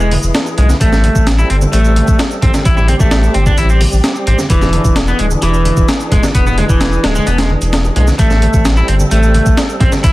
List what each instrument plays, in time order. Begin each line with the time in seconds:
Already playing: sub bass E1, tonewheel organ E3 E4 G#4
0.00 clean electric guitar G#3, shaker
0.11 open hi-hat, high conga
0.23 sub bass E1, shaker
0.35 snare, closed hi-hat, shaker
0.46 high bongo, shaker
0.58 sub bass B1, clean electric guitar G#3, closed hi-hat, low conga
0.69 snare, high conga, shaker
0.81 sub bass A1, tonewheel organ G3 C4 A4, clean electric guitar A3, kick, closed hi-hat, shaker
0.92 snare, high bongo, low conga, shaker
1.04 closed hi-hat, high conga
1.15 sub bass A1, kick, shaker
1.27 snare, closed hi-hat, shaker
1.39 clean electric guitar E4, high bongo, shaker
1.50 sub bass G1, clean electric guitar C4, closed hi-hat
1.62 high conga, shaker
1.73 sub bass A1, clean electric guitar A3, closed hi-hat, high bongo, shaker
1.85 shaker
1.96 closed hi-hat, high conga
2.08 sub bass A1, kick, shaker
2.19 snare, closed hi-hat, high bongo, shaker
2.31 shaker
2.42 sub bass A1, clean electric guitar C4, kick, closed hi-hat, low conga
2.54 snare, high bongo, high conga, shaker
2.65 sub bass A1, clean electric guitar E4, tonewheel organ G4, kick, closed hi-hat, shaker
2.77 clean electric guitar E4, low conga, shaker
2.88 clean electric guitar C4, closed hi-hat, high conga
3.00 sub bass A1, clean electric guitar A3, kick, high bongo, shaker
3.11 snare, closed hi-hat, shaker
3.23 shaker
3.34 sub bass G1, clean electric guitar C4, closed hi-hat, high bongo
3.46 clean electric guitar D4, kick, high conga, shaker
3.58 sub bass A1, clean electric guitar E4, closed hi-hat, shaker
3.69 clean electric guitar C4, shaker
3.80 open hi-hat, high bongo, high conga
3.92 sub bass A1, shaker
4.04 snare, closed hi-hat, shaker
4.15 high bongo, shaker
4.27 sub bass A1, clean electric guitar C4, closed hi-hat, low conga
4.38 snare, high conga, shaker
4.50 sub bass E1, tonewheel organ E3 D4 G#4, clean electric guitar E3, kick, closed hi-hat, shaker
4.61 snare, high bongo, low conga, shaker
4.73 closed hi-hat, high conga
4.85 sub bass E1, kick, shaker
4.96 snare, closed hi-hat, high bongo, shaker
5.08 clean electric guitar B3, shaker
5.19 sub bass D1, clean electric guitar G#3, closed hi-hat
5.31 high conga, shaker
5.42 sub bass E1, clean electric guitar E3, closed hi-hat, high bongo, shaker
5.54 shaker
5.65 closed hi-hat, high conga
5.77 sub bass E1, kick, high bongo, shaker
5.88 snare, closed hi-hat, shaker
6.00 shaker
6.11 sub bass E1, clean electric guitar G#3, kick, closed hi-hat, low conga
6.23 snare, high bongo, high conga, shaker
6.35 sub bass E1, clean electric guitar B3, kick, closed hi-hat, shaker
6.46 clean electric guitar B3, low conga, shaker
6.58 clean electric guitar G#3, closed hi-hat, high bongo, high conga
6.69 sub bass E1, clean electric guitar E3, kick, shaker
6.81 snare, closed hi-hat, shaker
6.92 shaker
7.04 sub bass D1, clean electric guitar G#3, snare, closed hi-hat, high bongo
7.15 clean electric guitar G#3, high conga, shaker
7.27 sub bass E1, clean electric guitar B3, closed hi-hat, shaker
7.38 clean electric guitar G#3, snare, closed hi-hat, high bongo, shaker
7.50 high conga
7.61 sub bass E1, closed hi-hat, shaker
7.73 snare, closed hi-hat, shaker
7.85 high bongo, shaker
7.96 sub bass B1, clean electric guitar G#3, closed hi-hat, low conga
8.07 snare, high conga, shaker
8.18 sub bass A1, tonewheel organ G3 C4 A4, clean electric guitar A3, kick, closed hi-hat, shaker
8.31 snare, high bongo, low conga, shaker
8.42 closed hi-hat, high conga
8.54 sub bass A1, kick, shaker
8.65 snare, closed hi-hat, shaker
8.77 clean electric guitar E4, high bongo, shaker
8.88 sub bass G1, clean electric guitar C4, closed hi-hat
9.00 high conga, shaker
9.11 sub bass A1, clean electric guitar A3, closed hi-hat, high bongo, shaker
9.23 shaker
9.34 closed hi-hat, high conga
9.46 sub bass A1, kick, shaker
9.57 snare, closed hi-hat, high bongo, shaker
9.69 shaker
9.80 sub bass A1, clean electric guitar C4, kick, closed hi-hat, low conga
9.92 snare, high bongo, high conga, shaker
10.04 sub bass A1, clean electric guitar E4, kick, closed hi-hat, shaker